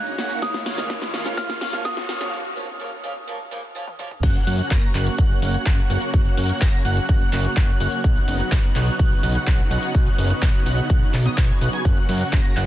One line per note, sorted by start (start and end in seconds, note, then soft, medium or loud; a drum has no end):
0.00 0.15 C#3 loud
0.00 0.38 C#3 medium
0.00 0.16 F#3 medium
0.00 0.16 A#3 medium
0.00 0.39 A#3 medium
0.00 0.16 C#4 medium
0.00 0.16 C#4 loud
0.00 0.16 F#4 medium
0.00 0.38 F#4 medium
0.00 0.16 C#5 medium
0.00 2.29 C#5 medium
0.00 0.16 A#5 loud
0.00 0.44 F#6 loud
0.00 riser medium
0.07 closed hi-hat soft
0.07 cabasa soft
0.18 0.40 C#3 medium
0.18 0.40 F#3 medium
0.18 0.39 A#3 medium
0.18 0.41 A#3 medium
0.18 0.39 C#4 medium
0.18 0.41 C#4 medium
0.18 0.39 F#4 medium
0.18 0.39 C#5 medium
0.18 0.39 F#5 loud
0.18 snare medium
0.18 open hi-hat loud
0.30 closed hi-hat soft
0.30 cabasa medium
0.42 0.51 C#3 medium
0.42 2.31 D#3 medium
0.42 0.51 F3 medium
0.42 2.31 G#3 medium
0.42 0.63 A#3 medium
0.42 0.51 A#3 medium
0.42 0.63 C#4 medium
0.42 0.52 C#4 medium
0.42 0.63 F4 medium
0.42 2.31 F4 medium
0.42 0.63 C#5 medium
0.42 0.63 F5 medium
0.42 1.33 D#6 medium
0.42 kick loud
0.42 snare medium
0.42 closed hi-hat medium
0.42 cabasa medium
0.54 snare medium
0.54 closed hi-hat soft
0.54 cabasa soft
0.66 0.75 A#3 medium
0.66 0.75 C#4 medium
0.66 0.75 F4 medium
0.66 0.75 C#5 medium
0.66 0.75 F5 medium
0.66 snare medium
0.66 open hi-hat loud
0.77 0.88 C#3 medium
0.77 0.88 F3 medium
0.77 0.88 A#3 medium
0.77 0.88 C#4 medium
0.77 0.88 C#4 loud
0.77 0.88 F4 medium
0.77 0.88 C#5 medium
0.77 0.88 F5 medium
0.77 snare medium
0.77 cabasa medium
0.89 0.99 C#3 medium
0.89 0.99 F3 medium
0.89 1.11 A#3 medium
0.89 0.99 A#3 medium
0.89 1.11 C#4 medium
0.89 0.99 C#4 medium
0.89 1.11 F4 medium
0.89 1.11 C#5 medium
0.89 1.11 F5 medium
0.89 kick loud
0.89 snare loud
0.89 closed hi-hat medium
0.89 cabasa medium
1.02 snare medium
1.02 closed hi-hat soft
1.02 cabasa soft
1.14 1.23 A#3 medium
1.14 1.23 C#4 medium
1.14 1.23 F4 medium
1.14 1.23 C#5 medium
1.14 1.23 F5 medium
1.14 snare loud
1.14 open hi-hat loud
1.25 1.35 C#3 medium
1.25 1.36 F3 medium
1.25 1.36 A#3 medium
1.25 1.36 C#4 medium
1.25 1.36 F4 medium
1.25 1.36 C#5 medium
1.25 1.36 F5 medium
1.25 snare medium
1.25 closed hi-hat soft
1.25 cabasa medium
1.37 1.46 C#3 medium
1.37 1.46 F3 medium
1.37 1.58 A#3 medium
1.37 1.47 A#3 medium
1.37 1.58 C#4 medium
1.37 1.47 C#4 medium
1.37 1.58 F4 medium
1.37 1.58 C#5 medium
1.37 1.58 F5 medium
1.37 1.82 F6 loud
1.37 kick loud
1.37 snare medium
1.37 closed hi-hat medium
1.37 cabasa medium
1.49 snare medium
1.49 closed hi-hat soft
1.49 cabasa soft
1.61 1.70 A#3 medium
1.61 1.70 C#4 medium
1.61 1.70 F4 medium
1.61 1.70 C#5 medium
1.61 1.70 F5 medium
1.61 snare loud
1.61 open hi-hat loud
1.73 1.83 C#3 loud
1.73 1.83 F3 medium
1.73 1.83 A#3 medium
1.73 1.83 C#4 medium
1.73 1.84 C#4 loud
1.73 1.83 F4 medium
1.73 1.83 C#5 medium
1.73 1.83 F5 medium
1.73 snare medium
1.73 cabasa medium
1.85 2.06 A#3 medium
1.85 1.94 A#3 medium
1.85 1.94 C#4 medium
1.85 2.34 D#6 medium
1.85 kick loud
1.85 snare loud
1.85 closed hi-hat medium
1.85 cabasa medium
1.97 snare medium
1.97 closed hi-hat soft
1.97 cabasa soft
2.09 2.18 A#3 medium
2.09 2.18 C#4 medium
2.09 2.18 F4 medium
2.09 2.18 C#5 medium
2.09 2.18 F5 medium
2.09 snare loud
2.09 open hi-hat loud
2.20 2.31 C#3 loud
2.20 2.31 F3 loud
2.20 2.31 A#3 medium
2.20 2.31 C#4 medium
2.20 2.31 C#4 loud
2.20 2.31 F4 medium
2.20 2.31 C#5 medium
2.20 2.31 F5 medium
2.20 snare medium
2.20 closed hi-hat soft
2.20 cabasa medium
2.32 2.41 C#3 medium
2.32 2.42 F3 medium
2.32 2.42 A#3 medium
2.32 2.42 C#4 medium
2.56 2.65 C#3 medium
2.56 2.65 F3 medium
2.56 2.66 A#3 medium
2.56 2.66 C#4 medium
2.80 2.89 C#3 medium
2.80 2.89 F3 medium
2.80 2.89 A#3 medium
2.80 2.90 C#4 medium
3.04 3.13 C#3 medium
3.04 3.13 F3 medium
3.04 3.13 A#3 medium
3.04 3.13 C#4 medium
3.27 3.37 C#3 medium
3.27 3.37 F3 medium
3.27 3.37 A#3 medium
3.27 3.37 C#4 medium
3.51 3.60 C#3 medium
3.51 3.61 F3 medium
3.51 3.61 A#3 medium
3.51 3.61 C#4 medium
3.75 3.84 C#3 medium
3.75 3.84 F3 medium
3.75 3.85 A#3 medium
3.75 3.85 C#4 medium
3.88 high tom medium
3.99 4.08 C#3 medium
3.99 4.08 F3 medium
3.99 4.08 A#3 medium
3.99 4.09 C#4 medium
3.99 mid tom medium
4.11 mid tom medium
4.23 4.38 F#1 loud
4.23 12.66 C#3 medium
4.23 12.66 F#3 medium
4.23 4.44 A#3 medium
4.23 8.00 A#3 medium
4.23 4.44 C#4 medium
4.23 4.44 F#4 medium
4.23 8.00 F#4 medium
4.23 4.44 C#5 medium
4.23 4.44 F#5 medium
4.23 4.44 F#6 medium
4.23 kick loud
4.23 closed hi-hat medium
4.23 crash loud
4.23 cabasa soft
4.35 closed hi-hat soft
4.35 cabasa soft
4.47 4.62 F#2 medium
4.47 4.56 A#3 medium
4.47 4.56 C#4 medium
4.47 4.56 F#4 medium
4.47 4.56 C#5 medium
4.47 4.56 F#5 medium
4.47 4.56 F#6 medium
4.47 open hi-hat loud
4.47 cabasa medium
4.59 4.69 A#3 medium
4.59 4.69 C#4 medium
4.59 4.69 F#4 medium
4.59 4.69 C#5 medium
4.59 4.69 F#5 medium
4.59 4.69 F#6 medium
4.59 closed hi-hat medium
4.59 cabasa soft
4.71 4.78 F#1 loud
4.71 4.92 A#3 loud
4.71 4.92 C#4 medium
4.71 4.92 F#4 medium
4.71 4.92 C#5 medium
4.71 4.92 A#6 loud
4.71 kick loud
4.71 clap loud
4.71 closed hi-hat medium
4.71 cabasa soft
4.83 closed hi-hat soft
4.83 cabasa soft
4.95 5.09 F#1 loud
4.95 5.16 A#3 medium
4.95 5.16 C#4 medium
4.95 5.16 F#4 medium
4.95 5.16 C#5 medium
4.95 5.16 F#5 loud
4.95 5.16 F#6 loud
4.95 clap medium
4.95 open hi-hat loud
4.95 cabasa medium
5.07 closed hi-hat medium
5.07 cabasa soft
5.18 5.33 F#1 medium
5.18 5.39 C#5 medium
5.18 5.39 F#5 loud
5.18 5.39 F#6 loud
5.18 kick loud
5.18 closed hi-hat medium
5.18 cabasa soft
5.31 cabasa soft
5.42 5.57 F#1 loud
5.42 5.51 A#3 medium
5.42 5.51 C#4 medium
5.42 5.51 F#4 medium
5.42 5.51 C#5 medium
5.42 5.51 F#5 medium
5.42 5.51 F#6 medium
5.42 open hi-hat loud
5.42 cabasa medium
5.54 5.64 A#3 medium
5.54 5.64 C#4 medium
5.54 5.64 F#4 medium
5.54 5.64 C#5 medium
5.54 5.64 F#5 medium
5.54 5.64 F#6 medium
5.54 closed hi-hat medium
5.54 cabasa soft
5.66 5.81 F#1 medium
5.66 5.87 F#6 loud
5.66 kick loud
5.66 clap loud
5.66 closed hi-hat medium
5.66 cabasa soft
5.78 cabasa soft
5.90 5.97 F#1 loud
5.90 6.11 A#3 loud
5.90 6.11 C#4 medium
5.90 6.11 F#4 medium
5.90 6.11 C#5 medium
5.90 6.11 F#5 loud
5.90 6.11 F#6 loud
5.90 open hi-hat loud
5.90 cabasa medium
6.02 closed hi-hat medium
6.02 cabasa soft
6.14 6.28 F#1 loud
6.14 6.35 A#3 medium
6.14 6.35 C#4 medium
6.14 6.35 F#4 medium
6.14 6.35 C#5 medium
6.14 6.35 F#5 medium
6.14 6.35 F#6 medium
6.14 kick loud
6.14 closed hi-hat medium
6.14 cabasa soft
6.26 closed hi-hat soft
6.26 cabasa soft
6.37 6.52 F#2 medium
6.37 6.47 A#3 medium
6.37 6.47 C#4 medium
6.37 6.47 F#4 medium
6.37 6.47 C#5 medium
6.37 6.47 F#5 medium
6.37 6.47 F#6 medium
6.37 open hi-hat loud
6.37 cabasa medium
6.49 6.60 A#3 medium
6.49 6.60 C#4 medium
6.49 6.60 F#4 medium
6.49 6.60 C#5 medium
6.49 6.60 F#5 medium
6.49 6.60 F#6 medium
6.49 closed hi-hat medium
6.49 cabasa soft
6.61 6.69 F#1 loud
6.61 6.82 A#6 loud
6.61 kick loud
6.61 clap loud
6.61 closed hi-hat medium
6.61 cabasa soft
6.73 closed hi-hat soft
6.73 cabasa soft
6.85 7.00 F#1 loud
6.85 7.06 A#3 medium
6.85 7.06 C#4 medium
6.85 7.06 F#4 medium
6.85 7.06 C#5 medium
6.85 7.06 F#5 loud
6.85 7.06 F#6 loud
6.85 open hi-hat loud
6.85 cabasa medium
6.97 closed hi-hat medium
6.97 cabasa soft
7.09 7.24 F#1 medium
7.09 7.30 F#5 loud
7.09 7.30 F#6 loud
7.09 kick loud
7.09 closed hi-hat medium
7.09 cabasa soft
7.21 cabasa soft
7.33 7.47 F#1 loud
7.33 7.42 A#3 medium
7.33 7.42 C#4 medium
7.33 7.42 F#4 medium
7.33 7.42 C#5 medium
7.33 7.42 F#5 medium
7.33 7.42 F#6 medium
7.33 clap medium
7.33 open hi-hat loud
7.33 cabasa medium
7.45 7.55 A#3 medium
7.45 7.55 C#4 medium
7.45 7.55 F#4 medium
7.45 7.55 C#5 medium
7.45 7.55 F#5 medium
7.45 7.55 F#6 medium
7.45 closed hi-hat medium
7.45 cabasa soft
7.57 7.71 F#1 medium
7.57 7.78 F#6 loud
7.57 kick loud
7.57 clap loud
7.57 closed hi-hat medium
7.57 cabasa soft
7.69 cabasa soft
7.80 7.88 F#1 loud
7.80 8.01 A#3 medium
7.80 8.01 C#4 medium
7.80 8.01 F#4 medium
7.80 8.01 C#5 medium
7.80 8.01 F#5 loud
7.80 8.01 F#6 loud
7.80 open hi-hat loud
7.80 cabasa medium
7.92 closed hi-hat medium
7.92 cabasa soft
8.04 8.19 B1 loud
8.04 11.81 B3 medium
8.04 8.25 B3 medium
8.04 11.81 D#4 loud
8.04 8.25 D#4 medium
8.04 8.25 F#4 medium
8.04 8.25 C#5 medium
8.04 8.25 F#5 medium
8.04 8.25 F#6 medium
8.04 kick loud
8.04 closed hi-hat medium
8.04 cabasa soft
8.16 closed hi-hat soft
8.16 cabasa soft
8.28 8.43 F#1 medium
8.28 8.37 B3 medium
8.28 8.37 D#4 medium
8.28 8.37 F#4 medium
8.28 8.37 C#5 medium
8.28 8.37 F#5 medium
8.28 8.37 F#6 medium
8.28 open hi-hat loud
8.28 cabasa medium
8.40 8.50 B3 medium
8.40 8.50 D#4 medium
8.40 8.50 F#4 medium
8.40 8.50 C#5 medium
8.40 8.50 F#5 medium
8.40 8.50 F#6 medium
8.40 closed hi-hat medium
8.40 cabasa soft
8.52 8.59 B1 loud
8.52 8.73 F#6 loud
8.52 kick loud
8.52 clap loud
8.52 closed hi-hat medium
8.52 cabasa soft
8.64 closed hi-hat soft
8.64 cabasa soft
8.76 8.90 B1 loud
8.76 8.97 B3 medium
8.76 8.97 D#4 medium
8.76 8.97 F#4 medium
8.76 8.97 C#5 medium
8.76 8.97 F#5 loud
8.76 8.97 F#6 loud
8.76 clap medium
8.76 open hi-hat loud
8.76 cabasa medium
8.88 closed hi-hat medium
8.88 cabasa soft
8.99 9.14 B1 medium
8.99 9.20 B3 loud
8.99 9.20 D#4 medium
8.99 9.20 F#4 medium
8.99 9.20 C#5 medium
8.99 9.20 F#5 loud
8.99 9.20 F#6 loud
8.99 kick loud
8.99 closed hi-hat medium
8.99 cabasa soft
9.12 cabasa soft
9.23 9.38 B1 loud
9.23 9.32 B3 medium
9.23 9.32 D#4 medium
9.23 9.32 F#4 medium
9.23 9.32 C#5 medium
9.23 9.32 F#5 medium
9.23 9.32 F#6 medium
9.23 open hi-hat loud
9.23 cabasa medium
9.35 9.45 B3 medium
9.35 9.45 D#4 medium
9.35 9.45 F#4 medium
9.35 9.45 C#5 medium
9.35 9.45 F#5 medium
9.35 9.45 F#6 medium
9.35 closed hi-hat medium
9.35 cabasa soft
9.47 9.62 B1 medium
9.47 9.68 B3 medium
9.47 9.68 D#4 medium
9.47 9.68 F#4 medium
9.47 9.68 F#5 loud
9.47 9.68 F#6 loud
9.47 kick loud
9.47 clap loud
9.47 closed hi-hat medium
9.47 cabasa soft
9.59 cabasa soft
9.71 9.78 B1 loud
9.71 9.92 B3 medium
9.71 9.92 D#4 medium
9.71 9.92 F#4 medium
9.71 9.92 C#5 medium
9.71 9.92 F#5 loud
9.71 9.92 F#6 loud
9.71 open hi-hat loud
9.71 cabasa medium
9.83 closed hi-hat medium
9.83 cabasa soft
9.95 10.09 B1 loud
9.95 10.16 B3 medium
9.95 10.16 D#4 medium
9.95 10.16 F#4 medium
9.95 10.16 C#5 medium
9.95 10.16 F#5 medium
9.95 10.16 F#6 medium
9.95 kick loud
9.95 closed hi-hat medium
9.95 cabasa soft
10.07 closed hi-hat soft
10.07 cabasa soft
10.18 10.33 F#1 medium
10.18 10.28 B3 medium
10.18 10.27 D#4 medium
10.18 10.27 F#4 medium
10.18 10.27 C#5 medium
10.18 10.27 F#5 medium
10.18 10.27 F#6 medium
10.18 open hi-hat loud
10.18 cabasa medium
10.30 10.40 B3 medium
10.30 10.40 D#4 medium
10.30 10.40 F#4 medium
10.30 10.40 C#5 medium
10.30 10.40 F#5 medium
10.30 10.40 F#6 medium
10.30 closed hi-hat medium
10.30 cabasa soft
10.42 10.50 B1 loud
10.42 10.63 B3 medium
10.42 10.63 F#4 medium
10.42 10.63 F#5 loud
10.42 kick loud
10.42 clap loud
10.42 closed hi-hat medium
10.42 cabasa soft
10.54 closed hi-hat soft
10.54 cabasa soft
10.66 10.81 B1 loud
10.66 10.87 B3 medium
10.66 10.87 D#4 medium
10.66 10.87 F#4 medium
10.66 10.87 C#5 medium
10.66 10.87 F#5 loud
10.66 10.87 F#6 loud
10.66 open hi-hat loud
10.66 cabasa medium
10.78 closed hi-hat soft
10.78 cabasa soft
10.90 11.04 B1 medium
10.90 11.11 B3 loud
10.90 11.11 D#4 medium
10.90 11.11 F#4 medium
10.90 11.11 C#5 medium
10.90 11.11 F#5 loud
10.90 11.11 F#6 loud
10.90 kick loud
10.90 closed hi-hat medium
10.90 cabasa soft
11.02 cabasa soft
11.14 11.28 B1 loud
11.14 clap medium
11.14 open hi-hat loud
11.14 cabasa medium
11.26 11.36 B3 medium
11.26 11.36 D#4 medium
11.26 11.36 F#4 medium
11.26 11.36 C#5 medium
11.26 11.36 D#5 loud
11.26 11.36 D#6 loud
11.26 closed hi-hat medium
11.26 cabasa soft
11.37 11.52 B1 medium
11.37 11.58 B3 medium
11.37 11.58 D#4 medium
11.37 11.58 C#5 medium
11.37 11.58 G#6 medium
11.37 kick loud
11.37 clap loud
11.37 closed hi-hat medium
11.37 cabasa soft
11.50 cabasa soft
11.61 11.69 B1 loud
11.61 11.70 B3 medium
11.61 11.70 D#4 medium
11.61 11.70 F#4 medium
11.61 11.70 C#5 medium
11.61 11.70 F#5 loud
11.61 11.70 F#6 loud
11.61 open hi-hat loud
11.61 cabasa medium
11.73 11.83 B3 medium
11.73 11.83 D#4 medium
11.73 11.83 F#4 medium
11.73 11.83 C#5 medium
11.73 11.83 G#5 loud
11.73 11.83 G#6 loud
11.73 closed hi-hat medium
11.73 cabasa soft
11.85 12.00 F#1 loud
11.85 12.06 A#3 medium
11.85 12.66 A#3 medium
11.85 12.06 C#4 medium
11.85 12.06 F#4 medium
11.85 12.66 F#4 loud
11.85 12.06 C#5 medium
11.85 12.06 F#5 medium
11.85 12.06 F#6 medium
11.85 kick loud
11.85 closed hi-hat medium
11.85 cabasa soft
11.97 closed hi-hat soft
11.97 cabasa soft
12.09 12.24 F#2 medium
12.09 12.18 A#3 medium
12.09 12.18 C#4 medium
12.09 12.18 F#4 medium
12.09 12.18 C#5 medium
12.09 12.18 F#5 medium
12.09 12.18 F#6 medium
12.09 open hi-hat loud
12.09 ride medium
12.09 cabasa medium
12.21 12.31 A#3 medium
12.21 12.31 C#4 medium
12.21 12.31 F#4 medium
12.21 12.31 C#5 medium
12.21 12.31 F#5 medium
12.21 12.31 F#6 medium
12.21 closed hi-hat medium
12.21 cabasa soft
12.33 12.40 F#1 loud
12.33 12.54 A#3 medium
12.33 12.54 C#4 medium
12.33 12.54 F#4 medium
12.33 12.54 C#5 medium
12.33 12.54 A#5 loud
12.33 12.54 A#6 loud
12.33 kick loud
12.33 clap loud
12.33 closed hi-hat medium
12.33 cabasa soft
12.45 closed hi-hat soft
12.45 cabasa soft
12.56 12.66 F#1 loud
12.56 12.66 A#3 medium
12.56 12.66 C#4 medium
12.56 12.66 F#4 medium
12.56 12.66 C#5 medium
12.56 12.66 F#5 loud
12.56 12.66 F#6 loud
12.56 clap medium
12.56 open hi-hat loud
12.56 ride medium
12.56 cabasa medium